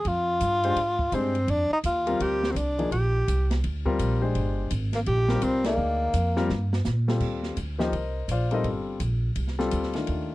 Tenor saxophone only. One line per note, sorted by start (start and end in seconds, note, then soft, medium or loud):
0.08 1.16 F4 loud
1.14 1.51 C4 medium
1.50 1.72 D4 medium
1.73 1.78 D#4 medium
1.86 2.23 F4 medium
2.22 2.53 G4 medium
2.51 2.58 C4 medium
2.57 2.91 D4 medium
2.92 3.59 G4 medium
4.95 5.00 A#3 medium
5.07 5.45 G4 loud
5.43 5.65 C4 medium
5.67 6.82 A#3 medium